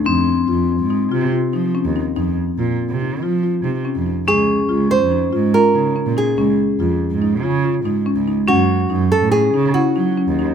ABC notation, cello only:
X:1
M:5/4
L:1/16
Q:1/4=142
K:Fphr
V:1 name="Cello" clef=bass
F,,4 F,,3 A,,3 C,2 z2 F,2 z E,,2 z | F,,2 z2 B,,2 z C,3 F,4 C,2 z F,,2 z | D,,4 D,,3 F,,3 A,,2 z2 D,2 z B,,2 z | D,,2 z2 F,,2 z A,,3 D,4 A,,2 z D,,2 z |
G,,4 G,,3 =A,,3 D,2 z2 G,2 z E,,2 z |]